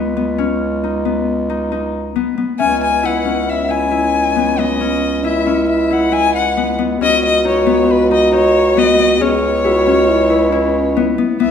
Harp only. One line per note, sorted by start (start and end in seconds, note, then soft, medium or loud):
0.00 0.16 B3 medium
0.00 0.38 C#4 medium
0.00 0.83 D#4 medium
0.17 1.05 B3 medium
0.38 2.59 C#4 medium
0.84 1.49 D#4 medium
1.05 2.15 B3 medium
1.50 1.71 D#4 medium
1.72 3.09 D#4 medium
2.16 2.37 B3 medium
2.38 4.36 B3 medium
2.60 3.24 C#4 medium
3.03 3.68 E4 medium
3.25 4.80 C#4 medium
3.69 3.91 E4 medium
3.91 5.24 E4 medium
4.36 4.58 B3 medium
4.58 6.57 B3 medium
4.81 5.46 C#4 medium
5.24 5.90 E4 medium
5.46 7.01 C#4 medium
5.91 6.11 E4 medium
6.12 7.51 E4 medium
6.57 6.78 B3 medium
6.79 7.66 B3 medium
7.01 9.20 C#4 medium
7.45 8.11 D#4 medium
7.66 8.77 B3 medium
8.11 8.32 D#4 medium
8.33 9.71 D#4 medium
8.77 8.99 B3 medium
8.99 10.96 B3 medium
9.21 9.86 C#4 medium
9.65 10.29 E4 medium
9.87 11.51 C#4 medium
10.30 10.52 E4 medium
10.52 11.51 E4 medium
10.97 11.18 B3 medium
11.18 11.39 B3 medium
11.40 11.51 B3 medium